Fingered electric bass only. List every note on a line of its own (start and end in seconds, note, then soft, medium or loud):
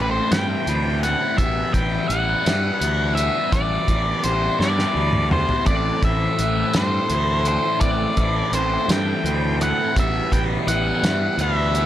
0.00 0.19 A1 medium
0.31 0.55 G2 medium
0.67 1.14 D2 medium
1.38 1.62 A1 medium
1.74 1.98 A1 medium
2.09 2.33 A1 medium
2.46 2.70 G2 medium
2.81 3.28 D2 medium
3.52 3.76 A1 medium
3.88 4.12 A1 medium
4.24 4.48 A1 medium
4.60 4.83 G2 medium
4.95 5.42 D2 medium
5.66 5.90 A1 medium
6.02 6.26 A1 medium
6.39 6.62 A1 medium
6.74 6.98 G2 medium
7.09 7.57 D2 medium
7.80 8.05 A1 medium
8.17 8.41 A1 medium
8.52 8.76 A1 medium
8.88 9.12 G2 medium
9.24 9.71 D2 medium
9.96 10.20 A1 medium
10.32 10.55 A1 medium
10.67 10.91 A1 medium
11.03 11.27 G2 medium
11.37 11.85 D2 medium